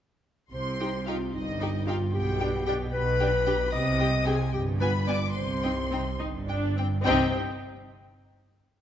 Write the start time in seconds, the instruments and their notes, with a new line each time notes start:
0.53 double bass section C2, cello section C3, clarinet C5, violin section C6
0.80 viola section D#4 G4, violin section G5
1.07 viola section D#4 G4, clarinet F4, violin section F5 G5
1.33 double bass section G1, cello section G2, clarinet D#4, violin section D#5
1.61 viola section D#4 G4, violin section G5
1.87 viola section D#4 G4, clarinet F4, violin section F5 G5
2.13 double bass section B1, cello section B2, clarinet G4, violin section G5
2.40 viola section D4 G4, violin section G5
2.66 viola section D4 G4, clarinet G4, violin section G5
2.92 double bass section B1, cello section B2, clarinet B4, violin section B5
3.20 viola section D4 G4, violin section G5
3.47 viola section D4 G4, violin section G5
3.72 double bass section C2, cello section C3, clarinet D#5, violin section D#6
4.00 viola section C4 G4, violin section G5
4.26 viola section C4 G4, clarinet G#4, violin section G5 G#5
4.53 double bass section G1, cello section G2, clarinet G4, violin section G5
4.80 viola section B3 F4, clarinet B4, violin section G#5 B5
5.07 viola section B3 F4, clarinet D5, violin section G#5 D6
5.35 double bass section C2, cello section C3, clarinet C5, violin section C6
5.63 viola section C4 D#4, violin section G5
5.92 viola section C4 D#4, violin section G5
6.20 double bass section G1, cello section G2, viola section D#4
6.48 viola section D4, violin section G5
6.77 viola section C4, violin section G5
7.05 double bass section C2, cello section C3, viola section C4 D#4, violin section G4 G5, clarinet C5